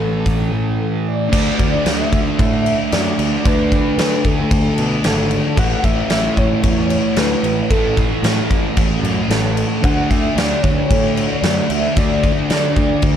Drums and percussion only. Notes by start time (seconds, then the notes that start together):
0.25 kick, open hi-hat
1.33 kick, crash
1.59 kick, crash
1.86 snare, crash
2.12 kick, crash
2.39 kick, crash
2.66 crash
2.92 snare, crash
3.19 crash
3.45 kick, crash
3.72 kick, crash
3.99 snare, crash
4.24 kick, crash
4.51 kick, crash
4.78 crash
5.04 snare, crash
5.31 crash
5.57 kick, crash
5.84 kick, crash
6.10 snare, crash
6.37 kick, crash
6.63 kick, crash
6.90 crash
7.16 snare, crash
7.44 crash
7.71 kick, crash
7.97 kick, crash
8.24 snare, crash
8.51 kick, crash
8.77 kick, crash
9.05 crash
9.30 snare, crash
9.57 crash
9.84 kick, crash
10.11 kick, crash
10.38 snare, crash
10.63 kick, crash
10.90 kick, crash
11.17 crash
11.43 snare, crash
11.70 crash
11.97 kick, crash
12.24 kick, crash
12.50 snare, crash
12.76 kick, crash
13.02 kick, crash